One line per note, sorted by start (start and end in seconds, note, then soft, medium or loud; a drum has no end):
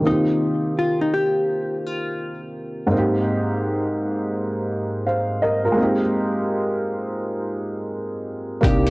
0.00 2.85 D#3 medium
0.00 2.86 A#3 medium
0.06 2.88 C4 soft
0.06 0.74 D#4 medium
0.06 2.89 F4 medium
0.11 2.90 G4 medium
0.79 0.99 F4 medium
1.01 1.12 D#4 medium
1.14 1.86 G4 medium
1.86 2.41 F4 medium
2.87 5.71 G#2 medium
2.87 5.72 A#3 medium
2.92 5.74 C4 medium
2.92 5.75 D#4 medium
2.98 5.05 G4 medium
5.06 5.40 C5 medium
5.06 5.40 F5 medium
5.42 5.63 A#4 medium
5.42 5.64 D#5 medium
5.65 5.99 F4 medium
5.65 5.99 A#4 medium
5.72 8.56 G#3 medium
5.72 8.58 A#3 medium
5.77 8.59 C4 medium
5.77 8.61 D#4 medium
5.83 8.62 G4 medium
8.61 8.90 C2 loud
8.61 8.90 A#3 medium
8.61 8.90 D4 medium
8.61 8.90 D#4 medium
8.61 8.90 G4 loud
8.61 kick loud
8.61 closed hi-hat medium
8.67 8.90 G4 medium
8.87 closed hi-hat soft